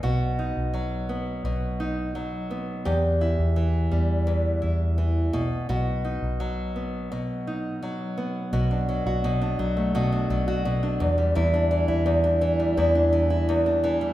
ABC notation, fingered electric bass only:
X:1
M:4/4
L:1/16
Q:1/4=85
K:Bphr
V:1 name="Fingered electric bass" clef=bass
B,,,3 B,,,4- B,,, B,,,8 | E,,3 E,,3 E,,4 E,,4 B,,,2 | B,,,3 B,,,4- B,,, z8 | [K:Em] B,,,3 B,,,3 B,,,4 B,,,4 E,,2 |
E,,3 E,,4- E,, E,,8 |]